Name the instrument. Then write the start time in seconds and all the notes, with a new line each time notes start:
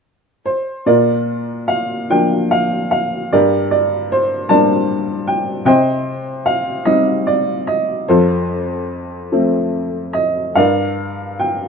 upright piano
0.46 C5
0.86 A#2 F4 A#4 D5
1.68 F5
2.10 F3 A#3 D4 G5
2.51 F5
2.91 F5
3.33 G2 G4 A#4 D5
3.71 D5
4.12 C5
4.49 G3 A#3 D4 D5 A5
5.28 G5
5.65 C3 C5 D#5 G5
6.46 F5
6.85 G3 C4 D#4 D#5
7.27 D5
7.67 D#5
8.08 F2 F4 A4 C5
9.32 F3 A3 C4
10.13 D#5
10.55 G2 A#4 D5 F5
11.40 G5